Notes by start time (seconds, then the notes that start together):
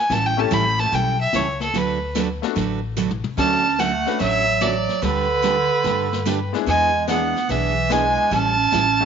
Already playing: G#5
0.10 A1 E3 G3 C#4 E4 A4 A5, brush sweep, snare
0.26 G5
0.37 A3 C#4 E4 G4 A4 A5
0.51 A1 E3 G3 C#4 E4 A4 B5, snare, hi-hat pedal
0.79 A5, snare
0.92 B1 E3 G3 C#4 E4 A4 G5, brush sweep, snare
1.21 E5
1.33 C#2 E3 G3 C#4 E4 A4 C#5, snare, hi-hat pedal
1.60 A4, snare
1.74 D2 D3 F#3 A3 D4 F#4 B4, brush sweep, snare
1.78 B4
2.15 D3 F#3 A3 D4 F#4 B4, snare, hi-hat pedal
2.42 A3 B3 D4 F#4 A4, snare
2.56 A1 D3 F#3 A3 D4 F#4 B4, brush sweep, snare
2.97 D3 F#3 A3 D4 F#4 B4, hi-hat pedal, mid tom
3.11 mid tom
3.24 mid tom
3.37 D2 D3 F#3 A3 C#4 D4 F#4 A4 A5, brush sweep, kick, snare, crash
3.79 D3 F#3 A3 C#4 F#4 F#5, snare, hi-hat pedal
4.06 A3 C#4 D4 F#4 B4, snare
4.19 A1 D3 F#3 A3 C#4 F#4 E5, brush sweep, snare
4.61 D3 F#3 A3 C#4 F#4 D5, snare, hi-hat pedal
4.89 snare
5.02 D2 D3 G3 A3 D4 G4 B4, brush sweep, snare
5.42 D3 G3 A3 D4 G4 B4, snare, hi-hat pedal
5.84 G2 D3 G3 A3 D4 G4 B4, brush sweep, snare
6.13 snare
6.25 D3 G3 A3 D4 G4 B4, snare, hi-hat pedal
6.53 G#3 B3 D4 E4 G#4, snare
6.66 E2 E3 G#3 B3 D4 G#4 G#5, brush sweep, snare
7.07 E3 G#3 B3 D4 E4 G#4 F#5, snare, hi-hat pedal
7.36 snare
7.49 B1 E3 B3 D4 G#4 E5, brush sweep, snare
7.89 E3 G#3 B3 D4 E4 G#4 G#5, snare, hi-hat pedal
8.31 A1 E3 G3 C#4 E4 A4 A5, brush sweep, snare
8.72 A1 E3 G3 C#4 E4 A4, snare, hi-hat pedal
9.00 G3 A3 C#4 E4